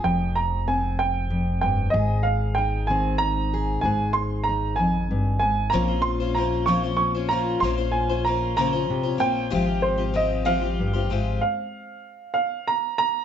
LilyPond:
<<
  \new Staff \with { instrumentName = "Upright piano" } { \time 6/8 \key f \minor \tempo 4. = 63 g''8 bes''8 aes''8 g''4 g''8 | ees''8 f''8 g''8 aes''8 bes''4 | aes''8 c'''8 bes''8 aes''4 aes''8 | bes''8 c'''8 bes''8 des'''8 des'''8 bes''8 |
c'''8 aes''8 bes''8 bes''4 g''8~ | g''8 c''8 ees''8 f''4. | f''4. f''8 bes''8 bes''8 | }
  \new Staff \with { instrumentName = "Twelve-string acoustic guitar" } { \time 6/8 \key f \minor r2. | r2. | r2. | <bes, bes des' f' c''>16 <des' f' c''>8 <des' f' c''>16 <bes des' f' c''>8 <bes, bes des' f' c''>16 <des' f' c''>8 <des' f' c''>16 <bes des' f' c''>8 |
<bes, bes des' f' c''>16 <des' f' c''>8 <des' f' c''>16 <bes des' f' c''>8 <bes, bes des' f' c''>16 <des' f' c''>8 <des' f' c''>16 <bes des' f' c''>8 | <aes c' f' g'>16 <c' f' g'>8 <c' f' g'>16 <aes c' f' g'>8 <aes c' f' g'>16 <c' f' g'>8 <c' f' g'>16 <aes c' f' g'>8 | r2. | }
  \new Staff \with { instrumentName = "Steel-string acoustic guitar" } { \clef bass \time 6/8 \key f \minor << { c'4 c'2 | aes'4 ees'8 c'8 ees'8 aes'8 | aes'4 ees'2 | <f c' des' f'>4 des'8 c'8 des'8 f'8 |
f'2. | <f c' g'>4 c'2~ | c'2. | } \\ { f,2 f,8 g,8 | aes,4. ees4. | aes,4. f,8 g,8 aes,8 | bes,4. f4. |
bes,4. des8 c8 bes,8 | aes,4. f,8 g,8 aes,8 | r2. | } >> }
  \new Staff \with { instrumentName = "Upright bass" } { \clef bass \time 6/8 \key f \minor f,,2. | aes,,2. | aes,,2. | bes,,2. |
bes,,2. | aes,,2. | r2. | }
>>